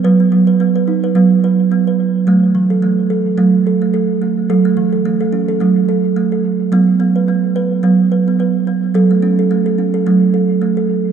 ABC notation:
X:1
M:4/4
L:1/16
Q:"Swing 16ths" 1/4=108
K:F#m
V:1 name="Kalimba"
B B,2 B B, B ^D B B,2 B2 B, B2 z | A,2 z A A,2 A2 A,2 A A, A2 A,2 | A A,2 A A, A C A A,2 A2 A, A2 z | B,2 z B B,2 B2 B,2 B B, B2 B,2 |
A A,2 A A, A C A A,2 A2 A, A2 z |]
V:2 name="Kalimba" clef=bass
F,2 F,6 F,8 | F,2 E,6 F,8 | F,2 E,6 F,8 | F,2 B,6 F,8 |
F,2 C6 F,8 |]